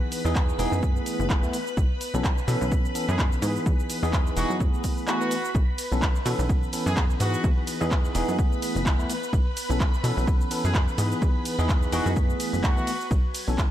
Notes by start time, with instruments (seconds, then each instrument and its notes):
Already playing: tine electric piano E3 B3 D#4 G#4, string machine B4 B5
0.12 open hi-hat, shaker
0.25 analog synth bass E2, tine electric piano E3 B3 D#4 G#4, shaker
0.35 kick, clap, shaker
0.49 shaker
0.59 analog synth bass E1, tine electric piano E3 B3 D#4 G#4, open hi-hat, shaker
0.72 analog synth bass F#2, shaker
0.82 tine electric piano E3, kick, shaker
0.96 shaker
1.06 open hi-hat, shaker
1.19 analog synth bass F#1, shaker
1.29 tine electric piano E3 A3 B3 G#4, kick, clap, shaker
1.43 analog synth bass E2, tine electric piano E3 A3 B3 B4, shaker
1.53 open hi-hat, shaker
1.67 shaker
1.77 analog synth bass B1, kick, shaker
2.01 open hi-hat, shaker
2.14 analog synth bass B1, tine electric piano E3 B3 C#4 A4, shaker
2.24 kick, clap, shaker
2.38 shaker
2.47 analog synth bass B2, tine electric piano E3 B3 C#4 A4, open hi-hat, shaker
2.61 analog synth bass B1, shaker
2.72 kick, shaker
2.85 shaker
2.95 tine electric piano E3 B3 C#4 A4, open hi-hat, shaker
3.09 analog synth bass F#2, trumpet section G#4, shaker
3.19 kick, clap, shaker
3.32 analog synth bass B1, shaker
3.42 analog synth bass G#2, tine electric piano E3 B3 D#4 G#4, open hi-hat, shaker
3.56 shaker
3.66 analog synth bass E2, kick, shaker
3.80 shaker
3.90 open hi-hat, shaker
4.02 analog synth bass E2, tine electric piano E3 B3 D#4 G#4, shaker
4.13 kick, clap, shaker
4.27 shaker
4.36 analog synth bass E1, tine electric piano E3 B3 D#4 G#4, trumpet section F#4, open hi-hat, shaker
4.50 analog synth bass F#2, shaker
4.60 analog synth bass F#2, tine electric piano E3, kick, shaker
4.74 shaker
4.84 kick, open hi-hat, shaker
4.98 shaker
5.07 tine electric piano E3 A3 B3 G#4, trumpet section F#4, clap, shaker
5.21 tine electric piano E3 A3 B3 B4, shaker
5.31 open hi-hat, shaker
5.45 shaker
5.55 analog synth bass B1, string machine B4 B5, kick, shaker
5.78 open hi-hat, ride, shaker
5.91 analog synth bass B1, tine electric piano E3 B3 C#4 A4, shaker
6.02 kick, clap, shaker
6.16 shaker
6.25 analog synth bass B2, tine electric piano E3 B3 C#4 A4, open hi-hat, ride, shaker
6.39 analog synth bass B1, shaker
6.49 kick, shaker
6.63 shaker
6.73 tine electric piano E3 B3 C#4 A4, open hi-hat, ride, shaker
6.86 analog synth bass F#2, trumpet section G#4, shaker
6.97 kick, clap, shaker
7.10 analog synth bass B1, shaker
7.19 analog synth bass G#2, tine electric piano E3 B3 D#4 G#4, trumpet section F#4, open hi-hat, ride, shaker
7.34 shaker
7.44 analog synth bass E2, kick, shaker
7.67 open hi-hat, ride, shaker
7.80 analog synth bass E2, tine electric piano E3 B3 D#4 G#4, shaker
7.91 kick, clap, shaker
8.05 shaker
8.14 analog synth bass E1, tine electric piano E3 B3 D#4 G#4, open hi-hat, ride, shaker
8.28 analog synth bass F#2, shaker
8.38 tine electric piano E3 A3, kick, shaker
8.52 shaker
8.62 open hi-hat, ride, shaker
8.75 analog synth bass F#1, shaker
8.85 tine electric piano E3 A3 B3 G#4, kick, clap, shaker
8.99 analog synth bass E2, tine electric piano E3 A3 B3 B4, shaker
9.10 open hi-hat, ride, shaker
9.23 shaker
9.33 analog synth bass B1, kick, shaker
9.57 open hi-hat, ride, shaker
9.69 analog synth bass B1, tine electric piano E3 B3 C#4 A4, shaker
9.80 kick, clap, shaker
9.94 shaker
10.03 analog synth bass B2, tine electric piano E3 B3 C#4 A4, open hi-hat, ride, shaker
10.17 analog synth bass B1, shaker
10.27 kick, shaker
10.41 shaker
10.50 tine electric piano E3 B3 C#4 A4, open hi-hat, ride, shaker
10.64 analog synth bass F#2, trumpet section G#4, shaker
10.75 kick, clap, shaker
10.88 analog synth bass B1, shaker
10.97 analog synth bass G#2, tine electric piano E3 B3 D#4 G#4, open hi-hat, ride, shaker
11.12 shaker
11.22 analog synth bass E2, kick, shaker
11.45 open hi-hat, ride, shaker
11.58 analog synth bass E2, tine electric piano E3 B3 D#4 G#4, shaker
11.69 kick, clap, shaker
11.83 shaker
11.92 analog synth bass E1, tine electric piano E3 B3 D#4 G#4, trumpet section F#4, open hi-hat, ride, shaker
12.06 analog synth bass F#2, shaker
12.16 tine electric piano E3 A3 B3 G#4, kick, shaker
12.30 shaker
12.40 open hi-hat, ride, shaker
12.53 analog synth bass F#1, shaker
12.63 tine electric piano E3 A3 B3 G#4, trumpet section F#4, kick, clap, shaker
12.77 analog synth bass E2, tine electric piano E3 A3 B3 B4, shaker
12.87 open hi-hat, ride, shaker
13.01 shaker
13.11 analog synth bass B1, string machine F#4 G#5, kick, shaker
13.35 open hi-hat, ride, shaker
13.48 analog synth bass B1, tine electric piano E3 B3 C#4 A4, shaker
13.58 kick, clap, shaker